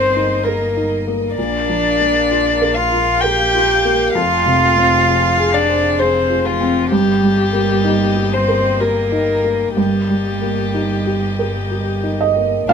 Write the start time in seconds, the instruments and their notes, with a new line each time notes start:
Already playing: double bass G1, felt piano G2 G3 A#3 D#4 A#4, string section A#3 A#4 D#5, cello C4, violin C5
0.16 felt piano D#4
0.43 cello A#3, violin A#4, felt piano A#4
0.77 felt piano D#4
1.07 felt piano A#3
1.36 double bass A#1, felt piano A#2, cello D4, violin D5, string section F5
1.69 felt piano F3
2.00 felt piano A#3
2.30 felt piano F4
2.62 felt piano A#4
2.75 cello F4, violin F5
2.92 felt piano F4
3.21 cello G4, felt piano A#4, violin G5
3.54 felt piano F4
3.85 felt piano A#3
4.14 double bass F1, felt piano F2, string section C4 G#4, cello F4, violin F5
4.46 felt piano C3
4.77 felt piano C4
5.07 felt piano F4
5.38 felt piano G#4
5.54 cello D4, violin D5
5.69 felt piano C5
6.00 cello C4, felt piano G#4, violin C5
6.30 felt piano F4
6.45 cello F3, violin F4
6.61 felt piano C4
6.91 double bass G1, felt piano G2, cello G3, string section A#3 G4 D#5, violin G4
7.22 felt piano G3
7.53 felt piano A#3
7.84 felt piano D#4
8.16 felt piano G4
8.33 cello C4, violin C5
8.48 felt piano A#4
8.80 cello A#3, felt piano G4, violin A#4
9.12 felt piano D#4
9.44 felt piano A#3
9.76 double bass G1, felt piano G2, cello G3, string section A#3 G4 D#5, violin G4
10.09 felt piano G3
10.41 felt piano A#3
10.74 felt piano D#4
11.06 felt piano G4
11.39 felt piano A#4
11.72 felt piano G4
12.03 felt piano D#4
12.21 felt piano D#5
12.36 felt piano A#3
12.69 double bass A#1, felt piano A#2 F5, string section A#3 F4 D5, violin D4